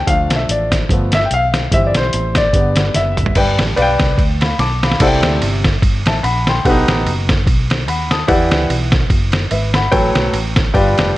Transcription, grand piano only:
0.07 F3 A3 D4 F5
0.36 E5
0.51 D5
0.90 F3 A3 B3
1.15 E5
1.25 G5
1.34 F5
1.71 E3 G3 C4 E5
1.87 D5
1.97 C5
2.37 D5
2.54 D3 G3 B3
2.96 E5
3.36 G2 B4 D5 G5
3.76 B4 D5 F5
3.82 G5
4.42 F5 B5
4.60 A5 D6
4.83 F5 B5
5.01 C3 E4 A4 C5 D5 F#5
5.07 G5
6.07 E5 A5
6.23 F#5 B5
6.48 G5 C6
6.65 B2 D4 G4 A4 B4 F#5
6.70 D#4
7.88 F#5 B5
8.11 A5 D#6
8.27 E3 E4 G4 B4 D5 F#5
9.51 B4 E5
9.74 F#5 B5
9.91 A2 F#3 A4 B4 C#5 G5
10.74 G2 F4 G4 B4 D5 G5

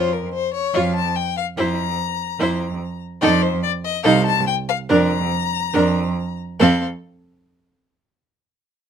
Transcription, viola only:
Already playing: F4
0.74 F4
1.57 E4
2.39 E4
3.21 D#4
4.05 D#4
4.89 D4
5.73 D4
6.60 C4

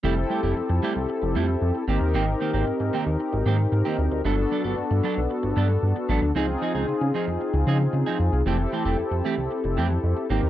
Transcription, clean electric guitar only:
0.03 G3 A3 E4 G4
0.17 muted clean electric guitar stroke
0.30 G3 A3 E4 G4
0.43 G3 A3 E4 G4
0.56 muted clean electric guitar stroke
0.70 muted clean electric guitar stroke
0.82 G3 A3 E4 G4
0.96 muted clean electric guitar stroke
1.09 muted clean electric guitar stroke
1.22 muted clean electric guitar stroke
1.35 G3 A3 E4 G4
1.48 muted clean electric guitar stroke
1.75 muted clean electric guitar stroke
1.88 D#3 A#3 C4 G4
2.01 muted clean electric guitar stroke
2.14 D#3 A#3 C4 G4
2.27 muted clean electric guitar stroke
2.40 D#3 A#3 C4 G4
2.53 D#3 A#3 C4 G4
2.67 muted clean electric guitar stroke
2.80 muted clean electric guitar stroke
2.93 D#3 A#3 C4 G4
3.07 muted clean electric guitar stroke
3.20 muted clean electric guitar stroke
3.33 muted clean electric guitar stroke
3.46 D#3 A#3 C4 G4
3.59 muted clean electric guitar stroke
3.72 muted clean electric guitar stroke
3.85 D#3 A#3 C4 G4
4.12 muted clean electric guitar stroke
4.25 F#3 B3 D4 A4
4.38 muted clean electric guitar stroke
4.51 F#3 B3 D4 A4
4.64 F#3 B3 D4 A4
4.78 muted clean electric guitar stroke
4.91 muted clean electric guitar stroke
5.03 F#3 B3 D4 A4
5.17 muted clean electric guitar stroke
5.30 muted clean electric guitar stroke
5.43 muted clean electric guitar stroke
5.56 F#3 B3 D4 A4
5.70 muted clean electric guitar stroke
5.96 muted clean electric guitar stroke
6.09 F#3 B3 D4 A4
6.22 muted clean electric guitar stroke
6.35 F3 C4 D#4 G#4
6.48 muted clean electric guitar stroke
6.61 F3 C4 D#4 G#4
6.75 F3 C4 D#4 G#4
6.88 muted clean electric guitar stroke
7.01 muted clean electric guitar stroke
7.14 F3 C4 D#4 G#4
7.28 muted clean electric guitar stroke
7.41 muted clean electric guitar stroke
7.54 muted clean electric guitar stroke
7.67 F3 C4 D#4 G#4
7.80 muted clean electric guitar stroke
7.93 muted clean electric guitar stroke
8.06 F3 C4 D#4 G#4
8.33 muted clean electric guitar stroke
8.46 E3 A3 C4 G4
8.59 muted clean electric guitar stroke
8.72 E3 A3 C4 G4
8.85 E3 A3 C4 G4
9.12 muted clean electric guitar stroke
9.25 E3 A3 C4 G4
9.38 muted clean electric guitar stroke
9.51 muted clean electric guitar stroke
9.64 muted clean electric guitar stroke
9.77 E3 A3 C4 G4
9.90 muted clean electric guitar stroke
10.17 muted clean electric guitar stroke
10.30 D#3 A#3 C4 G4
10.43 muted clean electric guitar stroke

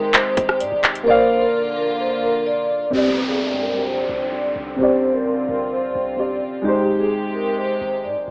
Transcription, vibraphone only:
0.60 D5
1.07 C5
1.42 A#4
1.77 A#4
2.00 C5
2.23 A#4
2.46 D5
2.93 G4
3.28 G#4
3.63 A#4
4.33 D5
4.79 C5
5.14 A#4
5.49 A#4
5.72 C5
6.18 D5
6.65 G4
7.00 G#4
7.35 A#4
7.58 C5
8.05 D5

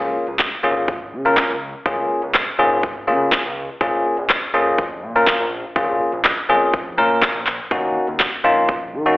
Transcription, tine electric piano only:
Already playing: A#3 C#4 F4 G#4
0.63 A#3 C#4 F4 G#4
1.25 A#3 C#4 F4 A#4
1.86 A#3 C#4 F4 G#4
2.59 A#3 C#4 F4 G#4
3.07 A#3 C#4 F4 G#4
3.81 A#3 C#4 F4 G#4
4.54 A#3 C#4 F4 G#4
5.16 A#3 C#4 F4 A#4
5.76 A#3 C#4 F4 G#4
6.49 A#3 C#4 F4 G#4
6.98 A#3 C#4 F4 A#4
7.71 A#3 C#4 D#4 F#4
8.44 A#3 C#4 D#4 F4
9.06 A#3 C#4 D#4 F#4

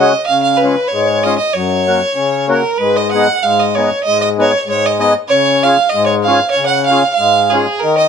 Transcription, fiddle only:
Already playing: D#5
0.26 F5
0.42 F5
0.57 B4
0.87 C#5
1.23 D#5
1.38 D#5
1.54 C#5
2.51 A#4
2.78 B4
2.96 D#5
3.12 F#5
3.43 F5
3.60 D#5
3.75 C#5
4.04 D#5
4.21 D#5
4.40 C#5
4.70 C#5
4.86 D#5
5.01 D#5
5.28 C#5
5.63 F5
5.89 D#5
6.06 C#5
6.23 F5
6.51 C#5
6.66 F#5
6.86 F5
7.14 F5
7.50 G#4
7.79 A#4
7.98 D#5

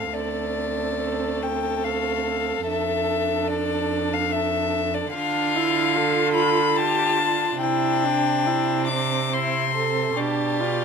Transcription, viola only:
Already playing: C4
0.16 C4
2.68 D4
5.16 D4
5.56 E4
5.95 F4
6.77 F4
7.61 E4
8.04 D4
8.47 E4
8.89 C4
10.18 D4
10.61 F4

